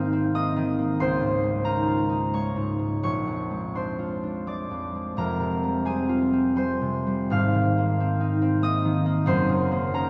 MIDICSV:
0, 0, Header, 1, 2, 480
1, 0, Start_track
1, 0, Tempo, 660066
1, 723, Time_signature, 3, 2, 24, 8
1, 1688, Tempo, 708383
1, 4568, Tempo, 747198
1, 5048, Tempo, 655738
1, 7082, End_track
2, 0, Start_track
2, 0, Title_t, "Harp"
2, 0, Program_c, 0, 46
2, 0, Note_on_c, 0, 32, 69
2, 0, Note_on_c, 0, 44, 68
2, 0, Note_on_c, 0, 51, 57
2, 0, Note_on_c, 0, 58, 60
2, 0, Note_on_c, 0, 60, 65
2, 0, Note_on_c, 0, 63, 68
2, 0, Note_on_c, 0, 65, 54
2, 0, Note_on_c, 0, 68, 58
2, 0, Note_on_c, 0, 70, 65
2, 0, Note_on_c, 0, 72, 73
2, 0, Note_on_c, 0, 77, 79
2, 0, Note_on_c, 0, 80, 75
2, 0, Note_on_c, 0, 84, 93
2, 0, Note_on_c, 0, 89, 107
2, 83, Note_off_c, 0, 60, 0
2, 92, Note_on_c, 0, 60, 66
2, 244, Note_off_c, 0, 58, 0
2, 252, Note_on_c, 0, 58, 68
2, 254, Note_on_c, 0, 87, 120
2, 262, Note_on_c, 0, 75, 89
2, 400, Note_off_c, 0, 51, 0
2, 409, Note_on_c, 0, 51, 63
2, 563, Note_off_c, 0, 58, 0
2, 572, Note_on_c, 0, 58, 60
2, 636, Note_off_c, 0, 70, 0
2, 719, Note_off_c, 0, 84, 0
2, 727, Note_on_c, 0, 37, 75
2, 729, Note_on_c, 0, 84, 121
2, 731, Note_off_c, 0, 72, 0
2, 739, Note_on_c, 0, 72, 89
2, 740, Note_off_c, 0, 32, 0
2, 742, Note_off_c, 0, 44, 0
2, 744, Note_off_c, 0, 51, 0
2, 745, Note_off_c, 0, 60, 0
2, 885, Note_on_c, 0, 44, 55
2, 1042, Note_on_c, 0, 56, 60
2, 1128, Note_off_c, 0, 80, 0
2, 1137, Note_off_c, 0, 68, 0
2, 1188, Note_off_c, 0, 63, 0
2, 1194, Note_on_c, 0, 63, 59
2, 1198, Note_on_c, 0, 82, 88
2, 1205, Note_on_c, 0, 70, 65
2, 1285, Note_off_c, 0, 65, 0
2, 1363, Note_on_c, 0, 65, 57
2, 1513, Note_off_c, 0, 63, 0
2, 1522, Note_on_c, 0, 63, 53
2, 1543, Note_off_c, 0, 84, 0
2, 1689, Note_off_c, 0, 56, 0
2, 1696, Note_on_c, 0, 56, 53
2, 1699, Note_on_c, 0, 85, 94
2, 1703, Note_on_c, 0, 73, 72
2, 1843, Note_off_c, 0, 44, 0
2, 1851, Note_on_c, 0, 44, 51
2, 1999, Note_off_c, 0, 56, 0
2, 2007, Note_on_c, 0, 56, 48
2, 2109, Note_off_c, 0, 89, 0
2, 2111, Note_off_c, 0, 77, 0
2, 2162, Note_off_c, 0, 85, 0
2, 2168, Note_on_c, 0, 34, 56
2, 2172, Note_off_c, 0, 73, 0
2, 2172, Note_on_c, 0, 85, 89
2, 2181, Note_off_c, 0, 63, 0
2, 2181, Note_on_c, 0, 73, 69
2, 2185, Note_off_c, 0, 37, 0
2, 2186, Note_off_c, 0, 44, 0
2, 2186, Note_off_c, 0, 87, 0
2, 2190, Note_off_c, 0, 75, 0
2, 2332, Note_on_c, 0, 41, 40
2, 2483, Note_off_c, 0, 56, 0
2, 2491, Note_on_c, 0, 56, 45
2, 2654, Note_on_c, 0, 62, 47
2, 2659, Note_on_c, 0, 84, 73
2, 2661, Note_off_c, 0, 72, 0
2, 2669, Note_on_c, 0, 72, 52
2, 2809, Note_off_c, 0, 65, 0
2, 2817, Note_on_c, 0, 65, 47
2, 2977, Note_off_c, 0, 62, 0
2, 2985, Note_on_c, 0, 62, 46
2, 3135, Note_off_c, 0, 56, 0
2, 3141, Note_on_c, 0, 56, 45
2, 3145, Note_on_c, 0, 86, 86
2, 3151, Note_on_c, 0, 74, 61
2, 3291, Note_off_c, 0, 58, 0
2, 3296, Note_off_c, 0, 41, 0
2, 3305, Note_on_c, 0, 41, 43
2, 3462, Note_off_c, 0, 56, 0
2, 3470, Note_on_c, 0, 56, 45
2, 3615, Note_off_c, 0, 82, 0
2, 3616, Note_off_c, 0, 41, 0
2, 3617, Note_on_c, 0, 29, 63
2, 3623, Note_on_c, 0, 41, 61
2, 3624, Note_on_c, 0, 82, 99
2, 3625, Note_off_c, 0, 70, 0
2, 3634, Note_on_c, 0, 70, 76
2, 3644, Note_off_c, 0, 86, 0
2, 3645, Note_off_c, 0, 34, 0
2, 3645, Note_off_c, 0, 62, 0
2, 3646, Note_off_c, 0, 85, 0
2, 3648, Note_off_c, 0, 74, 0
2, 3651, Note_off_c, 0, 73, 0
2, 3772, Note_on_c, 0, 48, 46
2, 3934, Note_on_c, 0, 55, 48
2, 4081, Note_on_c, 0, 60, 55
2, 4085, Note_on_c, 0, 80, 77
2, 4090, Note_on_c, 0, 68, 59
2, 4234, Note_off_c, 0, 65, 0
2, 4242, Note_on_c, 0, 65, 57
2, 4398, Note_off_c, 0, 60, 0
2, 4406, Note_on_c, 0, 60, 52
2, 4423, Note_off_c, 0, 82, 0
2, 4553, Note_off_c, 0, 55, 0
2, 4555, Note_off_c, 0, 84, 0
2, 4559, Note_on_c, 0, 55, 54
2, 4565, Note_off_c, 0, 72, 0
2, 4566, Note_on_c, 0, 84, 97
2, 4573, Note_on_c, 0, 72, 75
2, 4717, Note_off_c, 0, 48, 0
2, 4725, Note_on_c, 0, 48, 52
2, 4878, Note_off_c, 0, 55, 0
2, 4886, Note_on_c, 0, 55, 55
2, 5036, Note_on_c, 0, 32, 65
2, 5043, Note_on_c, 0, 44, 69
2, 5045, Note_on_c, 0, 89, 96
2, 5053, Note_on_c, 0, 77, 77
2, 5065, Note_off_c, 0, 29, 0
2, 5067, Note_off_c, 0, 55, 0
2, 5069, Note_off_c, 0, 41, 0
2, 5069, Note_off_c, 0, 48, 0
2, 5215, Note_on_c, 0, 51, 53
2, 5383, Note_on_c, 0, 58, 56
2, 5540, Note_off_c, 0, 60, 0
2, 5549, Note_on_c, 0, 60, 61
2, 5697, Note_on_c, 0, 63, 64
2, 5844, Note_off_c, 0, 60, 0
2, 5853, Note_on_c, 0, 60, 62
2, 5994, Note_off_c, 0, 58, 0
2, 6000, Note_on_c, 0, 58, 62
2, 6008, Note_on_c, 0, 87, 121
2, 6016, Note_on_c, 0, 75, 82
2, 6160, Note_off_c, 0, 51, 0
2, 6168, Note_on_c, 0, 51, 63
2, 6170, Note_off_c, 0, 56, 0
2, 6312, Note_off_c, 0, 58, 0
2, 6321, Note_on_c, 0, 58, 66
2, 6346, Note_off_c, 0, 70, 0
2, 6467, Note_off_c, 0, 84, 0
2, 6468, Note_on_c, 0, 30, 80
2, 6475, Note_off_c, 0, 72, 0
2, 6475, Note_on_c, 0, 42, 81
2, 6477, Note_on_c, 0, 84, 120
2, 6483, Note_on_c, 0, 72, 87
2, 6488, Note_off_c, 0, 32, 0
2, 6491, Note_off_c, 0, 80, 0
2, 6492, Note_off_c, 0, 87, 0
2, 6493, Note_off_c, 0, 44, 0
2, 6494, Note_off_c, 0, 60, 0
2, 6494, Note_off_c, 0, 63, 0
2, 6495, Note_off_c, 0, 68, 0
2, 6497, Note_off_c, 0, 51, 0
2, 6498, Note_off_c, 0, 75, 0
2, 6636, Note_on_c, 0, 49, 61
2, 6794, Note_off_c, 0, 58, 0
2, 6803, Note_on_c, 0, 58, 66
2, 6965, Note_on_c, 0, 61, 71
2, 6970, Note_on_c, 0, 82, 97
2, 6982, Note_on_c, 0, 70, 71
2, 7004, Note_off_c, 0, 65, 0
2, 7082, Note_off_c, 0, 30, 0
2, 7082, Note_off_c, 0, 42, 0
2, 7082, Note_off_c, 0, 49, 0
2, 7082, Note_off_c, 0, 58, 0
2, 7082, Note_off_c, 0, 61, 0
2, 7082, Note_off_c, 0, 70, 0
2, 7082, Note_off_c, 0, 72, 0
2, 7082, Note_off_c, 0, 77, 0
2, 7082, Note_off_c, 0, 82, 0
2, 7082, Note_off_c, 0, 84, 0
2, 7082, Note_off_c, 0, 89, 0
2, 7082, End_track
0, 0, End_of_file